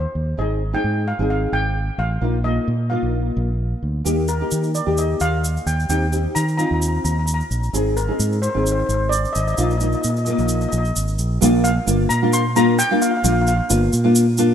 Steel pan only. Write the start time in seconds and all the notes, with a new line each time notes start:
0.39 D#5
0.75 G5
1.08 F5
1.30 F5
1.53 G5
1.99 F5
2.44 D#5
2.90 F5
4.29 A#4
4.75 D5
4.98 D#5
5.21 F5
5.67 G5
5.90 G5
6.35 A#5
6.58 A#5
6.67 A#5
6.74 A#5
6.80 A#5
6.88 A#5
6.97 A#5
7.04 A#5
7.11 A#5
7.19 A#5
7.26 A#5
7.34 A#5
7.97 A#4
8.42 C5
8.50 C5
8.57 C5
8.64 C5
8.72 C5
8.79 C5
8.86 C5
8.94 C5
9.09 D5
9.33 D#5
9.40 D#5
9.48 D#5
9.54 D#5
9.63 D#5
9.71 D#5
9.78 D#5
9.86 D#5
9.94 D#5
10.01 D#5
10.10 D#5
10.18 D#5
10.25 D#5
10.33 D#5
10.40 D#5
10.46 D#5
10.55 D#5
10.61 D#5
10.69 D#5
10.78 D#5
11.64 F5
12.09 A#5
12.33 C6
12.56 A#5
12.79 G5
13.02 F5
13.11 F5
13.17 F5
13.25 F5
13.32 F5
13.41 F5
13.48 F5
13.57 F5